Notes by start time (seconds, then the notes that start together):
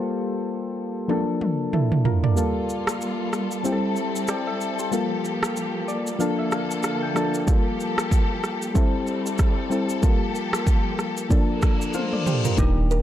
Already playing: G3 A#3 F4 G4 A4 C5
1.08 F3 A#3 D4 A4, high tom
1.41 mid tom
1.73 E4 A4, mid tom
1.92 mid tom
2.05 F4 A#4, floor tom
2.24 A4 D5, floor tom
2.36 G3 A#3 F4 A4, shaker
2.70 shaker
2.87 cross-stick, shaker
3.01 shaker
3.33 cross-stick, shaker
3.51 shaker
3.64 G3 C4 E4 G4, shaker
3.72 A4
3.96 shaker
4.16 shaker
4.28 D5 G5, cross-stick, shaker
4.47 A4 E5
4.61 shaker
4.79 G4 C5, shaker
4.91 F3 G3 A#3 F4 G4 A4, shaker
5.25 shaker
5.43 cross-stick, shaker
5.57 shaker
5.88 D5, shaker
6.07 shaker
6.19 D3 F3 A#3 D4 A4 F5, shaker
6.39 E5
6.52 F5, cross-stick, shaker
6.71 shaker
6.83 F5, cross-stick, shaker
7.02 G5
7.15 F3 A#3 D4 A4 A5, cross-stick, shaker
7.34 shaker
7.47 F3 G3 A#3 F4 G4 A4, kick, shaker
7.80 shaker
7.98 cross-stick, shaker
8.11 kick, shaker
8.44 cross-stick, shaker
8.62 shaker
8.74 G3 C4 E4 A4, kick, shaker
9.07 shaker
9.26 shaker
9.38 kick, cross-stick, shaker
9.70 G3 C4 E4 A4, shaker
9.89 shaker
10.02 F3 G3 A#3 F4 G4 A4, kick, shaker
10.35 shaker
10.53 cross-stick, shaker
10.67 kick, shaker
10.99 cross-stick, shaker
11.17 shaker
11.29 D3 F3 A#3 D4 A4, kick, reverse cymbal, shaker
11.62 kick, cross-stick, shaker
11.82 shaker
11.94 C5 F5, high tom, shaker
12.13 A4 D5, mid tom
12.26 G4 C5, mid tom, shaker
12.45 F4 A#4, floor tom, shaker
12.57 D#1 D#3 A#3 D4 D#4 G4, kick, high agogo, shaker
12.91 G4 A#4, shaker